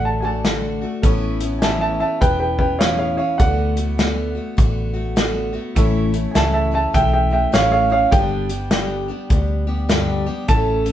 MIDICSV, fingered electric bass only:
0, 0, Header, 1, 2, 480
1, 0, Start_track
1, 0, Key_signature, 2, "major"
1, 0, Tempo, 590551
1, 845, Time_signature, 4, 2, 24, 8
1, 8876, End_track
2, 0, Start_track
2, 0, Title_t, "Fingered electric bass"
2, 0, Program_c, 0, 33
2, 0, Note_on_c, 0, 33, 76
2, 674, Note_off_c, 0, 33, 0
2, 841, Note_on_c, 0, 33, 90
2, 1634, Note_off_c, 0, 33, 0
2, 1805, Note_on_c, 0, 28, 76
2, 2596, Note_off_c, 0, 28, 0
2, 2764, Note_on_c, 0, 38, 91
2, 3555, Note_off_c, 0, 38, 0
2, 3724, Note_on_c, 0, 33, 80
2, 4516, Note_off_c, 0, 33, 0
2, 4682, Note_on_c, 0, 33, 98
2, 5079, Note_off_c, 0, 33, 0
2, 5162, Note_on_c, 0, 37, 84
2, 5572, Note_off_c, 0, 37, 0
2, 5642, Note_on_c, 0, 35, 85
2, 6052, Note_off_c, 0, 35, 0
2, 6122, Note_on_c, 0, 33, 76
2, 6532, Note_off_c, 0, 33, 0
2, 6602, Note_on_c, 0, 31, 96
2, 7394, Note_off_c, 0, 31, 0
2, 7564, Note_on_c, 0, 38, 85
2, 8355, Note_off_c, 0, 38, 0
2, 8525, Note_on_c, 0, 33, 95
2, 8876, Note_off_c, 0, 33, 0
2, 8876, End_track
0, 0, End_of_file